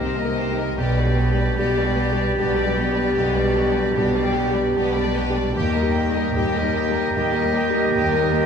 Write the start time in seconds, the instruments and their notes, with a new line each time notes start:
Already playing: double bass section C2, grand piano C2 A#3 D#4, cello section C3, french horn section D#3 A#4, viola section C4, oboe A#4, violin section C5, flute D#5
0.00 violin section G4, grand piano G4
0.17 viola section A#3, violin section A#4 D#5
0.25 grand piano A#3 D#4 G4
0.37 viola section C4, violin section G4 C5
0.51 grand piano A#3 D#4 G4
0.57 viola section A#3, violin section A#4 D#5
0.77 double bass section B1, grand piano B1, cello section B2, french horn section G3 G4, viola section B3, oboe G4, violin section G4 B4, flute D5
0.97 viola section G3, violin section B4 D5
1.05 grand piano G3 D4 G4
1.17 viola section B3, violin section G4 B4
1.32 grand piano G3 D4 G4
1.36 viola section G3, violin section B4 D5
1.56 double bass section B1, cello section B2, grand piano G3 D4 G4, viola section B3, violin section G4 B4
1.76 viola section G3, violin section B4 D5
1.85 grand piano G3 D4 G4
1.97 viola section B3, violin section G4 B4
2.12 grand piano G3 D4 G4, viola section G3
2.17 violin section B4 D5
2.35 double bass section B1, cello section B2, grand piano G3, viola section B3, violin section G4 B4
2.40 grand piano D4 G4
2.56 viola section G3, violin section B4 D5
2.65 grand piano G3 D4 G4
2.76 viola section B3, violin section G4 B4
2.91 grand piano G3 D4 G4, violin section D5
2.96 viola section G3, violin section B4
3.15 double bass section B1, grand piano B1, cello section B2, viola section B3, violin section G4 B4
3.36 viola section G3, violin section B4 D5
3.44 grand piano G3 D4 G4
3.55 viola section B3, violin section G4 B4
3.71 grand piano G3 D4 G4
3.75 viola section G3, violin section B4 D5
3.95 double bass section B1, cello section B2, grand piano G3 D4 G4, viola section B3, violin section G4 B4
4.14 viola section G3, violin section B4 D5
4.24 grand piano G3 D4 G4
4.35 viola section B3, violin section G4 B4
4.50 grand piano G3 D4 G4
4.54 viola section G3, violin section B4 D5
4.75 double bass section B1, cello section B2, grand piano G3 D4 G4, viola section B3, violin section G4 B4
4.94 viola section G3, violin section B4 D5
5.03 grand piano G3 D4 G4
5.15 viola section B3, violin section G4 B4
5.29 grand piano G3 D4 G4
5.34 viola section G3, violin section B4 D5
5.54 double bass section D#2, grand piano D#2, cello section D#2, french horn section G3 A#4, viola section A#3, oboe G4, violin section G4 G5, flute D#5
5.73 viola section G3, violin section A#4 D#5
5.82 grand piano G3 D#4 G4
5.93 viola section A#3, violin section G4 G5
6.10 grand piano G3 D#4 G4
6.14 viola section G3, violin section A#4 D#5
6.34 double bass section D#2, cello section D#2, grand piano G3 D#4 G4, viola section A#3, violin section G4 G5
6.54 viola section G3, violin section A#4 D#5
6.62 grand piano G3 D#4 G4
6.74 viola section A#3, violin section G4 G5
6.89 grand piano G3 D#4 G4
6.93 viola section G3, violin section A#4 D#5
7.14 double bass section D#2, cello section D#2, grand piano G3 D#4 G4, viola section A#3, violin section G4 G5
7.33 viola section G3, violin section A#4 D#5
7.43 grand piano G3 D#4 G4
7.53 viola section A#3, violin section G4 G5
7.69 grand piano G3 D#4 G4, viola section G3
7.74 violin section A#4 D#5
7.92 double bass section D#2, cello section D#2, grand piano D#2, viola section A#3, violin section G4 G5
8.12 viola section G3, violin section A#4 D#5
8.22 grand piano G3 D#4 G4
8.33 viola section A#3, violin section G4 G5